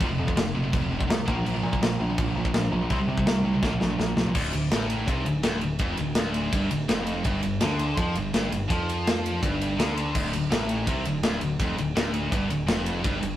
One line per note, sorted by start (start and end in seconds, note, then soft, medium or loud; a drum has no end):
0.00 0.18 F1 medium
0.00 0.08 F3 loud
0.00 kick loud
0.00 crash medium
0.09 0.18 F2 medium
0.09 0.17 C3 medium
0.18 0.26 F2 medium
0.18 0.36 F2 medium
0.18 0.26 C3 medium
0.27 0.35 F2 medium
0.27 0.35 C3 medium
0.27 kick medium
0.36 0.54 F1 loud
0.36 0.53 F2 medium
0.36 0.53 C3 medium
0.36 snare loud
0.36 crash medium
0.55 0.72 F1 medium
0.55 0.63 F2 medium
0.55 0.63 C3 medium
0.64 0.71 F2 medium
0.64 0.71 C3 medium
0.72 0.91 F1 medium
0.72 0.81 F2 medium
0.72 0.81 C3 medium
0.72 kick loud
0.72 crash medium
0.82 0.90 F2 medium
0.82 0.89 C3 medium
0.91 1.09 F1 medium
0.91 0.98 F2 medium
0.91 0.98 C3 medium
0.99 1.07 F2 medium
0.99 1.07 C3 medium
0.99 kick medium
1.08 1.27 C2 medium
1.08 1.25 F2 medium
1.08 1.25 C3 medium
1.08 snare loud
1.08 crash medium
1.26 1.45 A#1 loud
1.26 1.35 A#2 medium
1.26 1.35 F3 medium
1.26 1.35 A#3 loud
1.26 kick loud
1.36 1.44 A#2 medium
1.36 1.44 F3 medium
1.45 1.63 A#1 medium
1.45 1.54 A#2 medium
1.45 1.53 F3 loud
1.45 crash medium
1.55 1.62 A#2 medium
1.55 1.62 F3 medium
1.63 1.81 A#2 medium
1.63 1.72 A#2 medium
1.63 1.71 F3 medium
1.73 1.82 A#2 medium
1.73 1.82 F3 medium
1.73 kick medium
1.81 1.98 A#1 loud
1.81 1.99 A#2 medium
1.81 1.99 F3 medium
1.81 snare loud
1.81 crash medium
1.99 2.17 A#1 medium
1.99 2.09 A#2 medium
1.99 2.08 F3 medium
2.10 2.18 A#2 medium
2.10 2.18 F3 medium
2.18 2.34 A#1 medium
2.18 2.27 A#2 medium
2.18 2.27 F3 medium
2.18 kick loud
2.18 crash medium
2.28 2.36 A#2 medium
2.28 2.35 F3 medium
2.35 2.53 A#1 medium
2.35 2.45 A#2 medium
2.35 2.44 F3 medium
2.45 2.53 A#2 medium
2.45 2.53 F3 medium
2.45 kick medium
2.53 2.71 A#1 medium
2.53 2.71 A#2 medium
2.53 2.71 F3 medium
2.53 snare loud
2.53 crash medium
2.72 2.90 A#1 loud
2.72 2.80 A#2 medium
2.72 2.80 F3 medium
2.81 2.89 A#2 medium
2.81 2.90 F3 medium
2.90 3.07 C2 medium
2.90 2.98 C3 medium
2.90 2.98 G3 medium
2.90 2.99 C4 loud
2.90 kick loud
2.90 crash medium
2.99 3.07 C3 medium
2.99 3.07 G3 medium
3.08 3.25 C3 medium
3.08 3.17 C3 medium
3.08 3.17 G3 medium
3.18 3.26 C3 medium
3.18 3.27 G3 medium
3.18 kick medium
3.26 3.44 C2 loud
3.26 3.43 C3 medium
3.26 3.43 G3 medium
3.26 snare loud
3.26 crash medium
3.44 3.62 C2 medium
3.44 3.53 C3 medium
3.44 3.52 G3 medium
3.53 3.62 C3 medium
3.53 3.63 G3 medium
3.62 3.80 A#1 medium
3.62 3.71 A#2 medium
3.62 3.70 F3 medium
3.62 3.71 A#3 medium
3.62 kick loud
3.62 snare medium
3.72 3.79 A#2 medium
3.72 3.79 F3 medium
3.80 3.98 A#1 medium
3.80 3.88 A#2 medium
3.80 3.88 F3 medium
3.80 snare medium
3.90 3.97 A#2 medium
3.90 3.97 F3 medium
3.98 4.16 A#1 medium
3.98 4.15 A#2 medium
3.98 4.15 F3 medium
3.98 snare medium
4.17 4.34 C2 medium
4.17 4.25 A#2 medium
4.17 4.25 F3 medium
4.17 snare medium
4.26 4.35 A#2 medium
4.26 4.36 F3 medium
4.35 4.52 D1 medium
4.35 4.52 D2 loud
4.35 kick loud
4.35 crash loud
4.53 4.70 D1 medium
4.53 4.68 D2 medium
4.53 ride medium
4.71 5.05 A1 loud
4.71 5.07 A2 loud
4.71 snare loud
4.71 ride loud
4.90 ride medium
5.07 5.25 C2 medium
5.07 5.25 C3 loud
5.07 kick loud
5.07 ride loud
5.25 5.43 D1 medium
5.25 5.41 D2 medium
5.25 ride medium
5.43 5.61 D1 medium
5.43 5.61 D2 loud
5.43 snare loud
5.43 ride loud
5.61 5.79 D1 medium
5.61 5.77 D2 medium
5.61 ride medium
5.79 5.97 F1 medium
5.79 5.98 F2 loud
5.79 kick loud
5.79 ride medium
5.97 6.15 D1 medium
5.97 6.13 D2 medium
5.97 ride medium
6.15 6.50 D1 loud
6.15 6.52 D2 loud
6.15 snare loud
6.15 ride loud
6.34 ride medium
6.53 6.70 G1 medium
6.53 6.70 G2 loud
6.53 kick loud
6.53 ride loud
6.71 6.88 D1 medium
6.71 6.85 D2 medium
6.71 ride medium
6.89 7.23 F1 medium
6.89 7.24 F2 loud
6.89 snare loud
6.89 ride loud
7.07 ride medium
7.24 7.42 G1 loud
7.24 7.42 G2 loud
7.24 kick loud
7.24 ride loud
7.43 7.61 G1 medium
7.43 7.58 G2 medium
7.43 ride medium
7.61 7.96 D2 loud
7.61 7.97 D3 loud
7.61 snare loud
7.61 ride loud
7.79 ride medium
7.97 8.14 F2 medium
7.97 8.16 F3 loud
7.97 kick loud
7.97 ride medium
8.15 8.32 G1 medium
8.15 8.31 G2 medium
8.15 ride medium
8.34 8.50 G1 medium
8.34 8.51 G2 loud
8.34 snare loud
8.34 ride medium
8.51 8.68 G1 medium
8.51 8.67 G2 medium
8.51 ride medium
8.69 9.39 F2 medium
8.69 9.42 F3 loud
8.69 kick loud
8.69 ride medium
8.89 ride medium
9.07 snare loud
9.07 ride loud
9.26 ride medium
9.42 9.76 G1 medium
9.42 9.78 G2 loud
9.42 kick loud
9.42 ride loud
9.61 ride medium
9.77 10.13 D2 loud
9.77 10.14 D3 loud
9.77 snare loud
9.77 ride loud
9.97 ride medium
10.15 10.32 D1 medium
10.15 10.32 D2 loud
10.15 kick loud
10.15 crash loud
10.33 10.50 D1 medium
10.33 10.48 D2 medium
10.33 ride medium
10.50 10.85 A1 loud
10.50 10.87 A2 loud
10.50 snare loud
10.50 ride loud
10.69 ride medium
10.87 11.04 C2 medium
10.87 11.05 C3 loud
10.87 kick loud
10.87 ride loud
11.05 11.22 D1 medium
11.05 11.20 D2 medium
11.05 ride medium
11.22 11.40 D1 medium
11.22 11.41 D2 loud
11.22 snare loud
11.22 ride loud
11.41 11.59 D1 medium
11.41 11.56 D2 medium
11.41 ride medium
11.59 11.76 F1 loud
11.59 11.78 F2 loud
11.59 kick loud
11.59 ride medium
11.78 11.95 D1 medium
11.78 11.93 D2 medium
11.78 ride medium
11.95 12.29 D1 loud
11.95 12.31 D2 loud
11.95 snare loud
11.95 ride loud
12.14 ride medium
12.32 12.49 G1 medium
12.32 12.50 G2 loud
12.32 kick loud
12.32 ride loud
12.49 12.67 D1 medium
12.49 12.65 D2 medium
12.49 ride medium
12.67 13.02 F1 loud
12.67 13.02 F2 loud
12.67 snare loud
12.67 ride loud
12.86 ride medium
13.03 13.21 G1 loud
13.03 13.20 G2 loud
13.03 kick loud
13.03 ride loud
13.21 13.37 G1 medium
13.21 13.36 G2 medium
13.21 ride medium